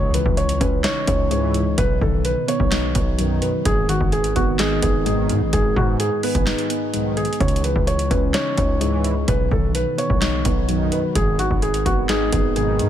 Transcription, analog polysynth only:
1.31 C#2 G#2 E3
3.19 B1 F#2 D#3
5.06 B1 G#2 D#3
6.93 B1 G#2 D#3
8.81 C#2 G#2 E3
10.69 B1 F#2 D#3
12.56 B1 G#2 D#3

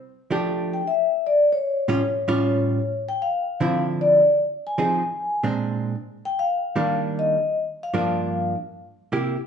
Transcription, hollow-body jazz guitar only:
0.31 F3 A3 D4 G4
1.88 A2 G3 C#4 F4
2.28 A2 G3 C#4 F4
3.61 D3 F3 C4 E4
4.78 F3 C4 D#4 G#4
5.43 A#2 G#3 C4 D4
6.76 D#3 G3 A#3 D4
7.94 G2 F3 A#3 D4
9.12 C3 A#3 E4 G4

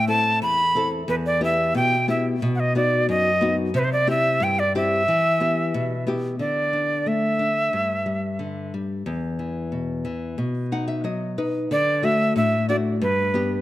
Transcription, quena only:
0.08 A5
0.43 B5
1.09 B4
1.26 D5
1.44 E5
1.76 G5
2.10 E5
2.55 F#5
2.60 D#5
2.77 D5
3.10 D#5
3.76 B4 C5
3.84 C5
3.93 D5
4.10 E5
4.43 G5
4.59 D5
4.77 E5
6.40 D5
7.08 E5
11.72 D5
12.04 E5
12.37 E5
12.69 D5
13.02 B4

